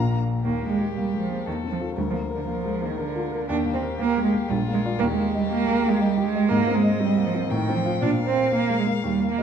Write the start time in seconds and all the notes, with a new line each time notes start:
Already playing: A#1 A#2 A#3 D4 F4 A#5
0.43 D#2 A#3 G4
0.63 A#3
0.69 G#3
0.79 G4
0.96 G3 A#3
1.14 G#3
1.21 F3
1.30 A#3
1.46 D#2 D#3 A4
1.64 C4
1.71 F3
1.81 F4 A4
1.96 D2 G3 A#4
2.10 F3 A#3
2.31 A#4
2.36 D3
2.47 F3 A#3
2.65 G#3
2.82 D#3 A#3
2.97 D3 A#4
3.16 F4
3.32 A#4
3.49 D#2 D4 G4
3.66 A#3
3.74 C4
3.83 A#4
3.99 A#3
4.17 G#3
4.24 G#3
4.34 A#3
4.48 A#1 G3 F4
4.69 A#3
4.73 G#3
4.85 F4 D5
4.99 D#2 A#3 G4
5.12 G#3
5.19 A#3
5.35 G3 D#5
5.50 A#3
5.68 G#3
5.84 A#3
5.89 G#3
6.00 G3 D#5
6.18 G4
6.25 G#3
6.35 D#5
6.49 G#2 A#3 D#5
6.68 C4
6.74 G#3
6.84 D#5
6.99 G3 C4
7.17 A#3
7.26 F3
7.35 C4
7.50 A2 D#3 G5
7.69 C4
7.76 F3
7.86 F4 F5
8.02 A#2 D4 F5
8.19 A#3
8.27 C4
8.36 F5
8.53 A#3
8.70 G#3
8.79 G#3
8.87 A#3
9.04 D#2 G3
9.20 A#3
9.31 A#3
9.38 G4 D#5